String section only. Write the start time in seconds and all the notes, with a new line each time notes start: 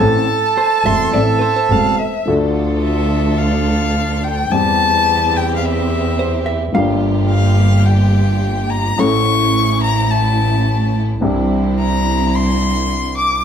2.28 D4 F4 A4
4.52 C4 E4 G4
6.75 A#3 F4 G4
8.98 A3 C#4 E4
11.22 C4 D4 E4